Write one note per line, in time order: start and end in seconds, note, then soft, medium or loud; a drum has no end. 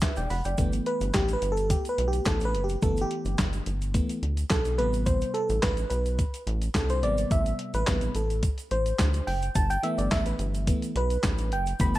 0.01 0.17 B4 medium
0.01 0.16 E5 medium
0.01 kick loud
0.01 snare loud
0.01 clap medium
0.01 closed hi-hat loud
0.01 shaker medium
0.16 0.27 E1 medium
0.16 0.30 D5 medium
0.16 0.30 G5 medium
0.16 closed hi-hat soft
0.16 shaker medium
0.30 0.42 F1 loud
0.30 0.45 F#5 medium
0.30 0.44 B5 medium
0.30 open hi-hat medium
0.30 shaker medium
0.44 0.55 F#1 loud
0.44 0.72 D5 medium
0.44 0.72 G5 medium
0.44 closed hi-hat medium
0.44 shaker medium
0.57 0.80 G1 loud
0.57 2.78 E3 soft
0.57 2.79 A3 soft
0.57 2.79 B3 medium
0.57 kick loud
0.57 closed hi-hat medium
0.57 shaker medium
0.72 closed hi-hat medium
0.72 shaker medium
0.86 1.15 B4 medium
0.86 closed hi-hat medium
1.01 1.11 G1 loud
1.01 closed hi-hat medium
1.01 shaker soft
1.14 1.36 A1 medium
1.14 1.33 G4 loud
1.14 kick loud
1.14 snare loud
1.14 clap medium
1.14 closed hi-hat medium
1.14 shaker medium
1.28 closed hi-hat medium
1.28 shaker medium
1.33 1.52 B4 medium
1.42 1.76 G1 medium
1.42 closed hi-hat medium
1.42 shaker medium
1.52 1.71 A4 medium
1.57 closed hi-hat soft
1.57 shaker medium
1.70 1.88 G4 medium
1.70 kick loud
1.70 closed hi-hat loud
1.70 shaker medium
1.85 closed hi-hat soft
1.85 shaker medium
1.89 2.08 B4 medium
1.98 2.20 B1 medium
1.98 closed hi-hat medium
2.08 2.27 G4 medium
2.13 closed hi-hat medium
2.13 shaker medium
2.25 2.56 A1 loud
2.25 2.44 A4 medium
2.25 kick loud
2.25 snare loud
2.25 clap medium
2.25 closed hi-hat loud
2.25 shaker medium
2.40 closed hi-hat medium
2.40 shaker medium
2.45 2.64 B4 loud
2.54 2.76 F#1 loud
2.54 closed hi-hat medium
2.64 2.83 G4 medium
2.69 closed hi-hat medium
2.69 shaker medium
2.82 3.05 G1 medium
2.82 3.93 E3 soft
2.82 3.93 A3 soft
2.82 3.94 B3 medium
2.82 3.02 A4 medium
2.82 kick loud
2.82 closed hi-hat medium
2.82 shaker medium
2.97 closed hi-hat soft
2.97 shaker medium
3.01 3.53 G4 medium
3.11 closed hi-hat medium
3.25 3.36 G1 medium
3.25 closed hi-hat medium
3.25 shaker soft
3.38 3.61 G1 medium
3.38 kick loud
3.38 snare loud
3.38 clap loud
3.38 closed hi-hat medium
3.38 shaker medium
3.53 closed hi-hat soft
3.53 shaker soft
3.66 4.00 G1 loud
3.66 closed hi-hat medium
3.66 shaker medium
3.82 closed hi-hat soft
3.82 shaker soft
3.94 4.20 E3 soft
3.94 4.20 A3 soft
3.94 4.20 B3 medium
3.94 kick loud
3.94 closed hi-hat loud
3.94 shaker medium
4.09 closed hi-hat soft
4.09 shaker medium
4.22 4.45 D2 medium
4.22 closed hi-hat medium
4.37 closed hi-hat medium
4.37 shaker medium
4.50 4.81 B1 loud
4.50 4.80 A4 medium
4.50 kick loud
4.50 snare loud
4.50 clap loud
4.50 closed hi-hat medium
4.50 shaker medium
4.65 closed hi-hat medium
4.65 shaker soft
4.78 5.23 A1 medium
4.78 5.58 C3 medium
4.78 5.59 G3 medium
4.78 5.59 B3 medium
4.78 5.07 B4 loud
4.78 closed hi-hat medium
4.93 closed hi-hat soft
4.93 shaker medium
5.06 5.32 C5 medium
5.06 kick loud
5.06 closed hi-hat medium
5.06 shaker medium
5.21 closed hi-hat medium
5.21 shaker medium
5.34 5.63 A4 medium
5.34 closed hi-hat medium
5.49 5.60 A1 loud
5.49 closed hi-hat medium
5.49 shaker soft
5.62 5.85 A1 loud
5.62 5.89 B4 loud
5.62 kick loud
5.62 snare loud
5.62 clap medium
5.62 closed hi-hat loud
5.62 shaker medium
5.77 closed hi-hat medium
5.77 shaker medium
5.90 6.25 B1 medium
5.90 6.42 B4 medium
5.90 closed hi-hat medium
5.90 shaker medium
6.06 closed hi-hat soft
6.06 shaker medium
6.19 kick loud
6.19 closed hi-hat loud
6.19 shaker medium
6.34 closed hi-hat medium
6.34 shaker medium
6.47 6.69 A1 medium
6.47 closed hi-hat medium
6.62 closed hi-hat medium
6.62 shaker medium
6.75 7.04 C2 loud
6.75 6.90 A4 medium
6.75 kick loud
6.75 snare loud
6.75 clap medium
6.75 closed hi-hat medium
6.75 shaker medium
6.89 7.03 C5 medium
6.89 closed hi-hat medium
6.89 shaker soft
7.03 7.25 G#1 medium
7.03 7.83 C3 medium
7.03 7.83 G3 medium
7.03 7.83 B3 medium
7.03 7.32 D5 loud
7.03 closed hi-hat medium
7.18 closed hi-hat medium
7.18 shaker medium
7.31 7.53 A1 loud
7.31 7.71 E5 loud
7.31 kick loud
7.31 closed hi-hat medium
7.31 shaker medium
7.46 closed hi-hat soft
7.46 shaker medium
7.59 closed hi-hat medium
7.74 7.84 A1 loud
7.74 8.17 B4 medium
7.74 closed hi-hat medium
7.74 shaker soft
7.87 8.09 A1 loud
7.87 8.12 C3 soft
7.87 8.12 G3 soft
7.87 8.12 B3 medium
7.87 kick loud
7.87 snare loud
7.87 clap medium
7.87 closed hi-hat loud
7.87 shaker medium
8.01 closed hi-hat medium
8.01 shaker soft
8.15 8.49 A1 loud
8.15 8.42 A4 medium
8.15 closed hi-hat medium
8.15 shaker medium
8.30 closed hi-hat soft
8.30 shaker medium
8.43 kick loud
8.43 closed hi-hat loud
8.43 shaker medium
8.58 closed hi-hat medium
8.58 shaker medium
8.71 8.93 A1 loud
8.71 9.29 C5 medium
8.71 closed hi-hat medium
8.86 closed hi-hat medium
8.86 shaker medium
8.99 9.21 D2 loud
8.99 kick loud
8.99 snare loud
8.99 clap medium
8.99 closed hi-hat medium
8.99 shaker medium
9.14 closed hi-hat medium
9.14 shaker soft
9.27 9.49 F#1 medium
9.27 9.56 G5 medium
9.27 open hi-hat medium
9.42 closed hi-hat soft
9.42 shaker medium
9.55 9.78 G1 loud
9.55 9.71 A5 medium
9.55 kick loud
9.55 closed hi-hat medium
9.55 shaker medium
9.70 9.84 G5 loud
9.70 closed hi-hat soft
9.70 shaker medium
9.83 10.66 E3 medium
9.83 10.67 A3 medium
9.83 10.67 B3 medium
9.83 9.99 E5 medium
9.83 closed hi-hat medium
9.98 10.09 G1 medium
9.98 10.12 D5 medium
9.98 closed hi-hat medium
9.98 shaker soft
10.11 10.34 A1 medium
10.11 10.27 E5 medium
10.11 kick loud
10.11 snare loud
10.11 clap medium
10.11 closed hi-hat medium
10.11 shaker medium
10.26 10.52 B4 medium
10.26 closed hi-hat medium
10.26 shaker medium
10.39 10.73 G1 medium
10.39 closed hi-hat medium
10.39 shaker medium
10.54 closed hi-hat soft
10.54 shaker medium
10.67 10.93 E3 soft
10.67 10.93 A3 soft
10.67 10.93 B3 medium
10.67 kick loud
10.67 closed hi-hat loud
10.67 shaker medium
10.82 closed hi-hat medium
10.82 shaker medium
10.95 11.18 B1 medium
10.95 11.54 B4 loud
10.95 closed hi-hat medium
11.10 closed hi-hat medium
11.10 shaker medium
11.23 11.53 A1 loud
11.23 kick loud
11.23 snare loud
11.23 clap medium
11.23 closed hi-hat loud
11.23 shaker medium
11.38 closed hi-hat medium
11.38 shaker medium
11.52 11.74 F#1 medium
11.52 11.81 G5 medium
11.52 closed hi-hat medium
11.66 closed hi-hat medium
11.66 shaker medium
11.80 11.99 G1 loud
11.80 11.99 E3 medium
11.80 11.99 A3 soft
11.80 11.99 B3 medium
11.80 11.96 B5 medium
11.80 kick loud
11.80 closed hi-hat medium
11.80 shaker medium
11.94 11.99 A5 loud
11.94 closed hi-hat medium
11.94 shaker medium